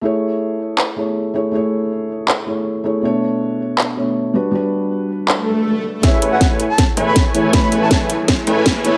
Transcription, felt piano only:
X:1
M:4/4
L:1/8
Q:1/4=160
K:A
V:1 name="Felt piano"
[A,EGc]4- [A,EGc] [A,EGc]2 [A,EGc] | [A,EGc]4- [A,EGc] [A,EGc]2 [A,EGc] | [B,,A,Dc]4- [B,,A,Dc] [B,,A,Dc]2 [=G,DFB] | [=G,DFB]4- [G,DFB] z3 |
[A,EGc]4- [A,EGc] [A,EGc]2 [A,EGc] | [A,Ec]4- [A,Ec] [A,EGc]2 [A,EGc] |]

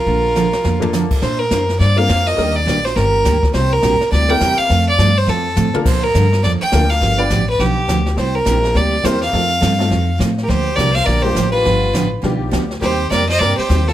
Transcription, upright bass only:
X:1
M:4/4
L:1/8
Q:"Swing" 1/4=207
K:Bb
V:1 name="Upright bass" clef=bass
B,,,4 F,,4 | B,,2 _G,,2 =G,,2 F,,2 | E,,2 B,,,2 G,,,2 D,,2 | C,,2 B,,, z D,,2 =E,, z |
F,,2 G,,2 F,,2 A,, z | B,,2 G,,2 F,, z D,,2 | G,,,2 A,,,2 =B,,,2 D,,2 | C,,2 B,,,2 D,,2 =E,,2 |
F,,2 G,,2 F,,2 A,,2 | D,,2 C,,2 B,,,2 A,,,2 | G,,,2 A,,,2 =B,,,2 D,,2 | E,,2 F,,2 G,, z E,,2 |]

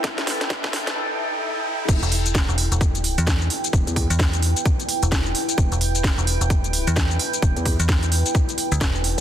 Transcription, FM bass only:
X:1
M:4/4
L:1/16
Q:"Swing 16ths" 1/4=130
K:Em
V:1 name="FM bass" clef=bass
z16 | z E,,,4 E,,,2 E,,,4 E,,3 z2 | z3 E,,4 z4 E,,,3 z2 | z E,,,4 E,,,2 E,,,4 E,,3 z2 |
z3 E,,4 z4 D,, E,,,3 z |]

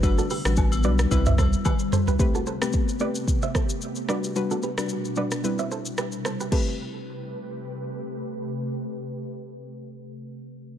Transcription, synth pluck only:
X:1
M:4/4
L:1/16
Q:"Swing 16ths" 1/4=111
K:Ador
V:1 name="Synth pluck"
[G,DFB]2 z [G,DFB] z2 [G,DFB]2 [G,CEB]6- [G,CEB] z | [A,CGB]2 z [A,CGB] z2 [A,CGB]2 z6 [G,DFB]2 | [G,DFB]2 z [G,DFB] z2 [G,DFB]2 [G,CEB]6- [G,CEB] z | [A,CGB]16- |
[A,CGB]16 |]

